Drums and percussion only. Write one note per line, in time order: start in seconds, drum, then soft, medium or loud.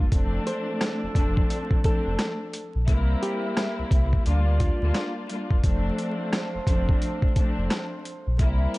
0.12 kick loud
0.12 closed hi-hat loud
0.47 closed hi-hat medium
0.81 cross-stick medium
0.81 snare loud
0.81 closed hi-hat medium
1.15 kick loud
1.15 closed hi-hat medium
1.37 kick medium
1.50 closed hi-hat medium
1.71 kick medium
1.84 kick loud
1.84 closed hi-hat medium
2.19 cross-stick medium
2.19 snare loud
2.19 closed hi-hat medium
2.53 closed hi-hat medium
2.88 kick loud
2.88 closed hi-hat loud
3.23 closed hi-hat medium
3.57 cross-stick medium
3.57 snare loud
3.57 closed hi-hat medium
3.91 kick loud
3.91 closed hi-hat medium
4.13 kick medium
4.26 closed hi-hat medium
4.60 kick loud
4.60 closed hi-hat medium
4.94 cross-stick medium
4.94 snare loud
4.94 closed hi-hat medium
5.30 closed hi-hat medium
5.51 kick loud
5.64 kick loud
5.64 closed hi-hat loud
5.99 closed hi-hat medium
6.33 cross-stick medium
6.33 snare loud
6.33 closed hi-hat medium
6.67 kick loud
6.67 closed hi-hat medium
6.89 kick medium
7.02 closed hi-hat medium
7.22 kick loud
7.36 kick loud
7.36 closed hi-hat medium
7.70 cross-stick medium
7.70 snare loud
7.70 closed hi-hat medium
8.05 closed hi-hat medium
8.39 kick loud
8.39 closed hi-hat loud
8.74 closed hi-hat medium